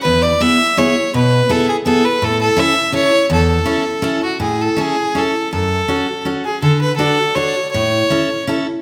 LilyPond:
<<
  \new Staff \with { instrumentName = "Fiddle" } { \time 3/4 \key a \major \tempo 4 = 163 b'8 d''8 e''4 cis''4 | b'4 a'8 gis'8 a'8 b'8 | a'8 a'8 e''4 cis''4 | a'2~ a'8 fis'8 |
gis'8 a'8 gis'4 a'4 | a'2 r8 gis'8 | a'8 b'8 a'4 cis''4 | cis''2 r4 | }
  \new Staff \with { instrumentName = "Steel-string acoustic guitar" } { \time 3/4 \key a \major e,4 <b e' gis'>8 r8 <b e' gis'>8 r8 | b,4 <b e' gis'>8 r8 <b e' gis'>8 r8 | a,4 <cis' e' a'>8 r8 <cis' e' a'>8 r8 | e,4 <cis' e' a'>8 r8 <cis' e' a'>8 r8 |
a,4 <cis' e' a'>8 r8 <cis' e' a'>8 r8 | fis,4 <cis' fis' a'>8 r8 <cis' fis' a'>8 r8 | d4 <d' fis' a'>8 r8 <d' fis' a'>8 r8 | a,4 <cis' e' a'>8 r8 <cis' e' a'>8 r8 | }
>>